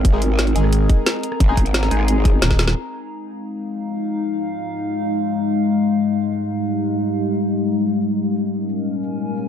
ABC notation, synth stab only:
X:1
M:4/4
L:1/16
Q:1/4=177
K:Fm
V:1 name="Synth stab"
[A,EA] [A,EA] z4 [A,EA]8- [A,EA]2- | [A,EA] [A,EA] z4 [A,EA]8- [A,EA]2 | z16 | z16 |
z16 | z16 | z16 |]